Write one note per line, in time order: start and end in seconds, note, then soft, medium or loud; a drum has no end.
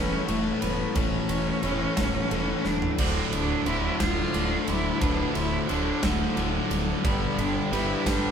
0.00 0.16 E1 medium
0.00 0.27 A2 medium
0.00 0.28 E3 loud
0.00 0.29 A3 loud
0.00 0.29 C#4 loud
0.00 2.95 E4 medium
0.00 0.28 B4 medium
0.00 2.94 C#5 medium
0.00 2.94 A5 loud
0.28 0.50 E1 loud
0.28 0.95 A2 loud
0.28 0.95 E3 loud
0.28 0.96 A3 loud
0.28 0.60 A3 medium
0.28 0.61 C#5 medium
0.28 ride medium
0.62 0.83 E1 loud
0.62 0.98 B3 medium
0.62 0.96 B4 medium
0.62 ride medium
0.95 1.17 E1 loud
0.95 1.62 A2 loud
0.95 1.63 E3 loud
0.95 1.64 A3 loud
0.95 2.68 C#4 loud
0.95 2.32 A4 medium
0.95 kick loud
0.95 ride loud
1.29 1.51 E1 loud
1.29 1.63 C#5 medium
1.29 ride medium
1.63 1.85 E1 medium
1.63 1.96 A2 medium
1.63 1.97 E3 loud
1.63 1.97 A3 loud
1.63 2.31 C#5 medium
1.63 ride medium
1.97 2.19 E1 loud
1.97 2.30 A2 medium
1.97 2.31 E3 loud
1.97 2.32 A3 medium
1.97 kick medium
1.97 snare loud
1.97 ride loud
2.31 2.52 E1 medium
2.31 2.97 A2 medium
2.31 2.97 E3 loud
2.31 2.99 A3 medium
2.31 5.05 A4 medium
2.31 ride medium
2.65 2.86 E1 medium
2.65 2.98 D4 loud
2.65 snare medium
2.82 floor tom medium
2.98 3.20 D1 loud
2.98 3.66 D2 loud
2.98 3.66 A2 loud
2.98 3.67 D3 loud
2.98 7.00 F3 medium
2.98 3.30 C4 medium
2.98 3.66 D5 medium
2.98 8.31 D5 medium
2.98 7.01 A5 medium
2.98 kick loud
2.98 ride loud
2.98 crash loud
3.33 3.54 D1 medium
3.33 3.69 D4 loud
3.33 ride medium
3.66 3.87 D1 medium
3.66 3.99 D2 medium
3.66 3.99 A2 medium
3.66 3.99 D3 loud
3.66 4.00 E4 medium
3.66 4.34 C5 medium
3.66 ride medium
4.00 4.22 D1 loud
4.00 4.33 D2 loud
4.00 4.33 A2 loud
4.00 4.34 D3 loud
4.00 4.64 F4 loud
4.00 kick medium
4.00 snare loud
4.00 ride loud
4.34 4.55 D1 medium
4.34 5.00 D2 loud
4.34 5.00 A2 medium
4.34 5.01 D3 loud
4.34 4.67 D5 medium
4.34 ride medium
4.68 4.89 D1 loud
4.68 5.03 E4 loud
4.68 5.01 C5 medium
4.68 ride medium
5.01 5.23 D1 loud
5.01 5.67 D2 loud
5.01 5.68 A2 loud
5.01 5.69 D3 loud
5.01 5.35 D4 loud
5.01 5.35 B4 loud
5.01 kick loud
5.01 ride loud
5.35 5.57 D1 loud
5.35 5.67 E4 loud
5.35 5.68 C5 medium
5.35 ride medium
5.69 5.91 D1 medium
5.69 6.02 D2 medium
5.69 6.02 A2 loud
5.69 6.03 D3 loud
5.69 6.04 D4 medium
5.69 6.37 C5 medium
5.69 ride medium
6.03 6.24 D1 loud
6.03 6.36 D2 loud
6.03 6.36 A2 loud
6.03 6.36 D3 loud
6.03 6.79 A3 loud
6.03 kick medium
6.03 snare loud
6.03 ride loud
6.37 6.58 D1 loud
6.37 7.02 D2 loud
6.37 7.03 A2 loud
6.37 7.03 D3 medium
6.37 7.05 A4 medium
6.37 ride medium
6.71 6.92 D1 loud
6.71 ride medium
7.04 7.26 G1 loud
7.04 7.72 G2 loud
7.04 7.71 D3 loud
7.04 7.72 G3 loud
7.04 7.39 B3 medium
7.04 8.31 G4 medium
7.04 8.31 D5 loud
7.04 8.31 B5 loud
7.04 kick loud
7.04 ride loud
7.38 7.59 G1 loud
7.38 7.72 D4 medium
7.38 ride medium
7.72 7.93 G1 loud
7.72 8.05 G2 medium
7.72 8.06 D3 medium
7.72 8.06 G3 loud
7.72 8.07 E4 loud
7.72 8.31 B4 medium
7.72 ride medium
8.06 8.28 G1 loud
8.06 8.31 G2 loud
8.06 8.31 D3 loud
8.06 8.31 G3 loud
8.06 8.31 D4 loud
8.06 kick loud
8.06 snare loud
8.06 ride loud